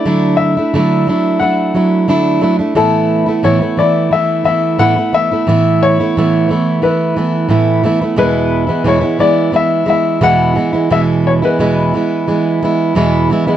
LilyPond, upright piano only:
\new Staff \with { instrumentName = "Upright piano" } { \time 4/4 \key a \major \tempo 4 = 88 d''8 e''4. fis''4. r8 | a'4 cis''8 d''8 e''8 e''8 fis''8 e''8~ | e''8 cis''4. b'4. r8 | b'4 cis''8 d''8 e''8 e''8 fis''4 |
e''8 cis''16 b'2~ b'8. r8 | }